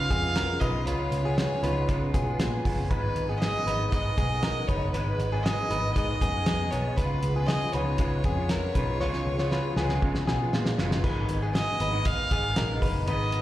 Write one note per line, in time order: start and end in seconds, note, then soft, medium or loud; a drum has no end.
0.00 0.23 C#3 medium
0.00 0.23 G#3 medium
0.00 0.22 B3 medium
0.00 0.20 F4 medium
0.00 0.61 F5 loud
0.10 0.54 F2 medium
0.10 0.36 B3 medium
0.10 0.36 G#4 medium
0.10 kick medium
0.10 closed hi-hat medium
0.21 0.59 G#3 soft
0.21 0.60 B3 soft
0.21 0.60 F4 soft
0.36 0.62 C#4 medium
0.36 0.61 A#4 medium
0.36 snare loud
0.36 closed hi-hat medium
0.60 0.87 B1 medium
0.60 0.85 C#3 medium
0.60 0.86 G#3 medium
0.60 0.86 B3 medium
0.60 0.87 D#4 medium
0.60 0.87 F4 medium
0.60 0.86 B4 medium
0.60 0.87 D#5 medium
0.60 kick medium
0.60 closed hi-hat medium
0.86 1.08 C#2 medium
0.86 1.24 C#3 medium
0.86 1.24 G#3 medium
0.86 1.23 B3 medium
0.86 1.23 F4 medium
0.86 1.23 B4 medium
0.86 2.39 C#5 medium
0.86 closed hi-hat medium
1.12 1.44 C#2 medium
1.12 closed hi-hat medium
1.24 1.60 C#3 soft
1.24 1.62 G#3 medium
1.24 1.63 B3 medium
1.24 1.37 B3 medium
1.24 1.63 F4 medium
1.24 1.37 G#4 medium
1.38 1.64 B3 soft
1.38 1.63 G#4 medium
1.38 snare loud
1.38 closed hi-hat medium
1.62 1.85 C#2 medium
1.62 1.87 C#3 soft
1.62 1.88 G#3 medium
1.62 1.89 B3 medium
1.62 2.12 D#4 soft
1.62 1.89 F4 medium
1.62 2.11 B4 medium
1.62 closed hi-hat medium
1.88 2.27 C#3 medium
1.88 2.10 C#3 medium
1.88 2.27 G#3 medium
1.88 2.27 B3 medium
1.88 2.26 F4 medium
1.88 kick medium
1.88 closed hi-hat medium
2.14 2.36 B2 medium
2.14 2.39 B3 soft
2.14 2.39 G#4 medium
2.14 kick medium
2.14 closed hi-hat medium
2.27 2.64 G#3 soft
2.27 2.65 B3 soft
2.27 2.65 F4 soft
2.39 2.61 A#2 medium
2.39 2.88 B3 medium
2.39 2.87 G#4 medium
2.39 snare loud
2.39 closed hi-hat medium
2.64 2.87 F#1 medium
2.64 2.90 C#3 medium
2.64 2.90 G#3 medium
2.64 2.91 B3 medium
2.64 2.91 F4 medium
2.64 kick medium
2.64 open hi-hat medium
2.90 3.12 G#1 medium
2.90 3.28 G#2 medium
2.90 3.29 D#3 medium
2.90 3.28 G#3 medium
2.90 3.28 B3 medium
2.90 3.27 D#4 medium
2.90 3.38 B4 medium
2.90 3.26 B4 medium
2.90 kick loud
2.90 closed hi-hat medium
3.15 3.48 G#1 medium
3.15 closed hi-hat medium
3.28 3.68 G#2 soft
3.28 3.66 D#3 soft
3.28 3.66 G#3 soft
3.28 3.67 B3 medium
3.28 3.41 B3 soft
3.28 3.67 D#4 medium
3.28 3.40 G#4 medium
3.41 3.67 B3 soft
3.41 3.66 G#4 medium
3.41 3.88 D#5 loud
3.41 snare loud
3.41 closed hi-hat medium
3.66 3.88 G#1 medium
3.66 3.91 D#3 medium
3.66 3.92 G#3 medium
3.66 3.92 B3 medium
3.66 4.15 D#4 soft
3.66 3.93 D#4 medium
3.66 4.15 B4 medium
3.66 snare soft
3.66 closed hi-hat medium
3.92 4.30 G#2 medium
3.92 4.14 G#2 loud
3.92 4.30 D#3 medium
3.92 4.31 G#3 medium
3.92 4.31 B3 medium
3.92 4.29 D#4 medium
3.92 4.69 D#5 loud
3.92 kick medium
3.92 closed hi-hat medium
4.18 4.61 B1 medium
4.18 4.44 B3 medium
4.18 4.43 G#4 medium
4.18 kick medium
4.18 closed hi-hat medium
4.30 4.69 G#3 soft
4.30 4.69 B3 soft
4.30 4.68 D#4 soft
4.43 4.69 D#4 soft
4.43 4.68 A#4 medium
4.43 snare loud
4.43 closed hi-hat medium
4.68 4.90 F#1 medium
4.68 4.93 D#3 medium
4.68 4.94 G#3 medium
4.68 4.94 B3 medium
4.68 4.94 D#4 medium
4.68 4.93 B4 medium
4.68 4.92 C#5 medium
4.68 kick medium
4.68 closed hi-hat medium
4.92 5.15 G#1 medium
4.92 5.32 G#2 medium
4.92 5.32 D#3 medium
4.92 5.32 G#3 medium
4.92 5.31 B3 medium
4.92 5.31 D#4 medium
4.92 5.45 B4 medium
4.92 5.30 B4 medium
4.92 closed hi-hat medium
5.19 5.51 G#1 medium
5.19 closed hi-hat medium
5.32 5.71 G#2 soft
5.32 5.68 D#3 soft
5.32 5.69 G#3 soft
5.32 5.70 B3 medium
5.32 5.45 B3 soft
5.32 5.70 D#4 medium
5.32 5.44 G#4 medium
5.43 5.71 B3 soft
5.43 5.70 G#4 medium
5.43 5.94 D#5 medium
5.43 snare loud
5.43 closed hi-hat medium
5.70 5.92 G#1 medium
5.70 5.94 D#3 soft
5.70 5.95 G#3 medium
5.70 5.96 B3 medium
5.70 6.19 D#4 soft
5.70 5.96 D#4 medium
5.70 6.18 B4 medium
5.70 closed hi-hat medium
5.95 6.33 G#2 medium
5.95 6.17 G#2 medium
5.95 6.34 D#3 medium
5.95 6.34 G#3 medium
5.95 6.33 B3 medium
5.95 6.32 D#4 medium
5.95 6.72 D#5 medium
5.95 kick loud
5.95 closed hi-hat medium
6.21 6.43 F#2 medium
6.21 6.47 B3 medium
6.21 6.46 G#4 medium
6.21 kick medium
6.21 closed hi-hat medium
6.33 6.71 G#3 soft
6.33 6.71 B3 soft
6.33 6.71 D#4 soft
6.46 6.68 F2 medium
6.46 6.95 B3 medium
6.46 6.95 G#4 medium
6.46 snare loud
6.46 closed hi-hat medium
6.71 6.94 B1 medium
6.71 6.96 D#3 medium
6.71 6.96 G#3 medium
6.71 6.97 B3 medium
6.71 6.98 D#4 medium
6.71 6.98 C#5 medium
6.71 closed hi-hat medium
6.96 7.19 C#2 loud
6.96 7.35 C#3 medium
6.96 7.35 G#3 medium
6.96 7.35 B3 medium
6.96 7.34 F4 medium
6.96 7.48 B4 medium
6.96 7.33 B4 medium
6.96 kick loud
6.96 closed hi-hat medium
7.23 7.55 C#2 loud
7.23 closed hi-hat medium
7.35 7.72 C#3 medium
7.35 7.74 G#3 soft
7.35 7.74 B3 medium
7.35 7.49 B3 medium
7.35 7.73 F4 medium
7.35 7.48 G#4 medium
7.46 7.74 B3 soft
7.46 7.74 G#4 medium
7.46 7.74 D#5 loud
7.46 snare loud
7.46 closed hi-hat medium
7.72 7.95 C#2 medium
7.72 7.97 C#3 medium
7.72 7.98 G#3 medium
7.72 7.98 B3 medium
7.72 8.22 D#4 soft
7.72 7.99 F4 medium
7.72 8.22 B4 medium
7.72 10.53 C#5 medium
7.72 closed hi-hat medium
7.98 8.37 C#3 medium
7.98 8.21 C#3 medium
7.98 8.37 G#3 medium
7.98 8.37 B3 medium
7.98 8.36 F4 medium
7.98 kick loud
7.98 closed hi-hat medium
8.24 8.68 F2 medium
8.24 8.51 B3 medium
8.24 8.50 G#4 medium
8.24 kick medium
8.24 closed hi-hat medium
8.37 8.75 G#3 soft
8.37 8.76 B3 medium
8.37 8.75 F4 soft
8.49 8.76 C#4 medium
8.49 8.75 A#4 medium
8.49 snare medium
8.49 closed hi-hat medium
8.75 9.01 B1 medium
8.75 8.99 C#3 medium
8.75 9.00 G#3 medium
8.75 9.01 B3 medium
8.75 9.01 D#4 medium
8.75 9.01 F4 medium
8.75 9.00 B4 medium
8.75 kick medium
8.75 closed hi-hat medium
9.00 9.23 C#2 medium
9.00 9.39 C#3 medium
9.00 9.39 G#3 medium
9.00 9.38 B3 medium
9.00 9.37 F4 medium
9.00 9.38 F4 loud
9.00 9.37 C#5 medium
9.00 snare soft
9.13 snare soft
9.26 9.58 C#2 medium
9.38 9.76 C#3 medium
9.38 9.77 G#3 medium
9.38 9.77 B3 medium
9.38 9.77 F4 medium
9.38 9.52 F4 medium
9.38 9.52 C#5 medium
9.38 snare soft
9.51 9.78 F4 soft
9.51 9.77 B4 medium
9.51 snare medium
9.76 9.98 C#2 medium
9.76 10.01 C#3 medium
9.76 10.02 G#3 medium
9.76 10.25 B3 soft
9.76 10.02 B3 medium
9.76 10.03 F4 medium
9.76 10.25 G#4 medium
9.76 snare medium
9.89 snare soft
10.02 10.40 C#3 medium
10.02 10.24 C#3 medium
10.02 10.41 G#3 medium
10.02 10.40 B3 medium
10.02 10.39 F4 medium
10.02 kick medium
10.15 snare medium
10.27 10.49 B2 medium
10.27 10.53 B3 medium
10.27 10.53 G#4 medium
10.27 snare medium
10.40 10.78 G#3 soft
10.40 10.79 B3 soft
10.40 10.79 F4 soft
10.53 10.75 A#2 medium
10.53 11.02 G#3 medium
10.53 11.01 F4 medium
10.53 snare medium
10.66 snare medium
10.78 11.00 F#1 medium
10.78 11.03 C#3 medium
10.78 11.03 G#3 medium
10.78 11.04 B3 medium
10.78 11.05 F4 medium
10.78 snare medium
10.91 snare medium
11.03 11.26 G#1 loud
11.03 11.42 D#3 medium
11.03 11.43 G#3 medium
11.03 11.42 B3 medium
11.03 11.41 D#4 medium
11.03 11.40 B4 medium
11.03 kick loud
11.03 crash medium
11.29 11.62 G#1 medium
11.29 closed hi-hat medium
11.42 11.94 G#3 soft
11.42 11.93 B3 soft
11.42 11.55 B3 medium
11.42 11.92 D#4 soft
11.42 11.54 G#4 medium
11.55 11.81 B3 soft
11.55 11.81 G#4 medium
11.55 12.08 D#5 loud
11.55 snare loud
11.55 closed hi-hat medium
11.80 12.13 G#1 medium
11.80 12.29 D#4 medium
11.80 12.29 B4 medium
11.80 closed hi-hat medium
11.93 12.30 G#2 soft
11.93 12.30 D#3 medium
11.93 12.30 G#3 medium
11.93 12.31 B3 medium
11.93 12.31 D#4 medium
12.05 12.82 F5 loud
12.05 kick loud
12.05 closed hi-hat medium
12.31 12.53 G#1 medium
12.31 12.69 G#2 medium
12.31 12.70 D#3 medium
12.31 12.70 G#3 medium
12.31 12.69 B3 medium
12.31 12.57 B3 medium
12.31 12.67 D#4 medium
12.31 12.57 G#4 medium
12.31 kick medium
12.31 closed hi-hat medium
12.56 12.78 A#1 medium
12.56 12.82 D#4 medium
12.56 12.82 A#4 medium
12.56 snare loud
12.56 closed hi-hat loud
12.68 13.06 G#3 medium
12.68 13.07 B3 medium
12.68 13.07 D#4 medium
12.82 13.04 F#1 medium
12.82 13.08 D#4 medium
12.82 13.07 B4 medium
12.82 kick medium
12.82 open hi-hat medium
13.06 13.40 G#1 medium
13.06 13.42 D#3 medium
13.06 13.42 G#3 medium
13.06 13.42 B3 medium
13.06 13.42 D#4 medium
13.06 13.42 B4 medium
13.06 13.42 D#5 medium
13.06 closed hi-hat medium
13.32 closed hi-hat medium